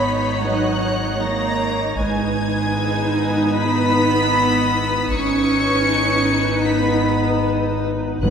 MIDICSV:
0, 0, Header, 1, 12, 480
1, 0, Start_track
1, 0, Key_signature, 5, "minor"
1, 0, Tempo, 779221
1, 1226, Time_signature, 4, 2, 24, 8
1, 5113, End_track
2, 0, Start_track
2, 0, Title_t, "Violin section"
2, 0, Program_c, 0, 48
2, 0, Note_on_c, 0, 95, 94
2, 269, Note_off_c, 0, 95, 0
2, 272, Note_on_c, 0, 90, 102
2, 749, Note_off_c, 0, 90, 0
2, 750, Note_on_c, 0, 94, 103
2, 1224, Note_on_c, 0, 92, 98
2, 1228, Note_off_c, 0, 94, 0
2, 2186, Note_off_c, 0, 92, 0
2, 2192, Note_on_c, 0, 95, 122
2, 3130, Note_off_c, 0, 95, 0
2, 3151, Note_on_c, 0, 97, 127
2, 4100, Note_on_c, 0, 95, 96
2, 4109, Note_off_c, 0, 97, 0
2, 4583, Note_off_c, 0, 95, 0
2, 5069, Note_on_c, 0, 90, 115
2, 5113, Note_off_c, 0, 90, 0
2, 5113, End_track
3, 0, Start_track
3, 0, Title_t, "Violin section"
3, 0, Program_c, 1, 48
3, 0, Note_on_c, 1, 87, 55
3, 0, Note_on_c, 1, 90, 50
3, 487, Note_off_c, 1, 87, 0
3, 968, Note_off_c, 1, 90, 0
3, 1238, Note_on_c, 1, 87, 61
3, 1711, Note_on_c, 1, 88, 62
3, 4804, Note_off_c, 1, 88, 0
3, 4808, Note_off_c, 1, 87, 0
3, 5060, Note_on_c, 1, 87, 52
3, 5113, Note_off_c, 1, 87, 0
3, 5113, End_track
4, 0, Start_track
4, 0, Title_t, "Violin section"
4, 0, Program_c, 2, 48
4, 0, Note_on_c, 2, 83, 89
4, 247, Note_off_c, 2, 83, 0
4, 257, Note_on_c, 2, 78, 82
4, 739, Note_on_c, 2, 82, 97
4, 742, Note_off_c, 2, 78, 0
4, 1216, Note_on_c, 2, 80, 86
4, 1223, Note_off_c, 2, 82, 0
4, 2162, Note_off_c, 2, 80, 0
4, 2175, Note_on_c, 2, 83, 108
4, 3141, Note_off_c, 2, 83, 0
4, 3143, Note_on_c, 2, 85, 101
4, 4101, Note_on_c, 2, 83, 84
4, 4105, Note_off_c, 2, 85, 0
4, 4574, Note_off_c, 2, 83, 0
4, 5071, Note_on_c, 2, 78, 101
4, 5113, Note_off_c, 2, 78, 0
4, 5113, End_track
5, 0, Start_track
5, 0, Title_t, "Grand piano"
5, 0, Program_c, 3, 0
5, 0, Control_c, 3, 64, 127
5, 0, Note_on_c, 3, 73, 54
5, 481, Note_off_c, 3, 73, 0
5, 1237, Control_c, 3, 64, 0
5, 1351, Control_c, 3, 64, 127
5, 5077, Control_c, 3, 64, 0
5, 5113, End_track
6, 0, Start_track
6, 0, Title_t, "Ambient pad"
6, 0, Program_c, 4, 92
6, 0, Note_on_c, 4, 63, 68
6, 0, Note_on_c, 4, 73, 76
6, 0, Note_on_c, 4, 75, 73
6, 1202, Note_off_c, 4, 63, 0
6, 1203, Note_off_c, 4, 75, 0
6, 1205, Note_off_c, 4, 73, 0
6, 1234, Note_on_c, 4, 71, 74
6, 1236, Note_on_c, 4, 63, 72
6, 3126, Note_off_c, 4, 71, 0
6, 3127, Note_off_c, 4, 63, 0
6, 3156, Note_on_c, 4, 63, 71
6, 3157, Note_on_c, 4, 71, 70
6, 5047, Note_off_c, 4, 63, 0
6, 5047, Note_off_c, 4, 71, 0
6, 5071, Note_on_c, 4, 73, 60
6, 5074, Note_on_c, 4, 63, 61
6, 5076, Note_on_c, 4, 71, 64
6, 5113, Note_off_c, 4, 63, 0
6, 5113, Note_off_c, 4, 71, 0
6, 5113, Note_off_c, 4, 73, 0
6, 5113, End_track
7, 0, Start_track
7, 0, Title_t, "Viola section"
7, 0, Program_c, 5, 48
7, 0, Note_on_c, 5, 63, 77
7, 0, Note_on_c, 5, 73, 77
7, 1204, Note_off_c, 5, 63, 0
7, 1205, Note_off_c, 5, 73, 0
7, 1229, Note_on_c, 5, 71, 83
7, 1232, Note_on_c, 5, 63, 88
7, 3123, Note_off_c, 5, 71, 0
7, 3124, Note_off_c, 5, 63, 0
7, 3145, Note_on_c, 5, 63, 86
7, 3147, Note_on_c, 5, 71, 87
7, 5041, Note_off_c, 5, 63, 0
7, 5042, Note_off_c, 5, 71, 0
7, 5067, Note_on_c, 5, 71, 72
7, 5070, Note_on_c, 5, 63, 75
7, 5113, Note_off_c, 5, 63, 0
7, 5113, Note_off_c, 5, 71, 0
7, 5113, End_track
8, 0, Start_track
8, 0, Title_t, "French horn section"
8, 0, Program_c, 6, 60
8, 271, Note_on_c, 6, 63, 75
8, 274, Note_on_c, 6, 59, 72
8, 443, Note_off_c, 6, 63, 0
8, 445, Note_off_c, 6, 59, 0
8, 1228, Note_on_c, 6, 59, 86
8, 1228, Note_on_c, 6, 63, 92
8, 3123, Note_off_c, 6, 59, 0
8, 3123, Note_off_c, 6, 63, 0
8, 3158, Note_on_c, 6, 59, 96
8, 3158, Note_on_c, 6, 63, 90
8, 5048, Note_off_c, 6, 59, 0
8, 5048, Note_off_c, 6, 63, 0
8, 5071, Note_on_c, 6, 63, 84
8, 5073, Note_on_c, 6, 59, 80
8, 5113, Note_off_c, 6, 59, 0
8, 5113, Note_off_c, 6, 63, 0
8, 5113, End_track
9, 0, Start_track
9, 0, Title_t, "Cello section"
9, 0, Program_c, 7, 48
9, 0, Note_on_c, 7, 59, 81
9, 250, Note_off_c, 7, 59, 0
9, 270, Note_on_c, 7, 54, 81
9, 748, Note_off_c, 7, 54, 0
9, 753, Note_on_c, 7, 58, 95
9, 1230, Note_off_c, 7, 58, 0
9, 1233, Note_on_c, 7, 56, 83
9, 2171, Note_off_c, 7, 56, 0
9, 2191, Note_on_c, 7, 59, 102
9, 3149, Note_off_c, 7, 59, 0
9, 3150, Note_on_c, 7, 61, 104
9, 4108, Note_off_c, 7, 61, 0
9, 4110, Note_on_c, 7, 59, 83
9, 4578, Note_off_c, 7, 59, 0
9, 5068, Note_on_c, 7, 54, 88
9, 5113, Note_off_c, 7, 54, 0
9, 5113, End_track
10, 0, Start_track
10, 0, Title_t, "Timpani"
10, 0, Program_c, 8, 47
10, 5068, Note_on_c, 8, 44, 76
10, 5113, Note_off_c, 8, 44, 0
10, 5113, End_track
11, 0, Start_track
11, 0, Title_t, "Double bass section"
11, 0, Program_c, 10, 48
11, 0, Note_on_c, 10, 32, 69
11, 1203, Note_off_c, 10, 32, 0
11, 1231, Note_on_c, 10, 32, 72
11, 3124, Note_off_c, 10, 32, 0
11, 3150, Note_on_c, 10, 32, 76
11, 5043, Note_off_c, 10, 32, 0
11, 5072, Note_on_c, 10, 32, 72
11, 5113, Note_off_c, 10, 32, 0
11, 5113, End_track
12, 0, Start_track
12, 0, Title_t, "Sub bass"
12, 0, Program_c, 11, 38
12, 0, Note_on_c, 11, 32, 89
12, 1203, Note_off_c, 11, 32, 0
12, 1234, Note_on_c, 11, 32, 89
12, 3126, Note_off_c, 11, 32, 0
12, 3149, Note_on_c, 11, 32, 82
12, 5043, Note_off_c, 11, 32, 0
12, 5069, Note_on_c, 11, 32, 78
12, 5113, Note_off_c, 11, 32, 0
12, 5113, End_track
0, 0, End_of_file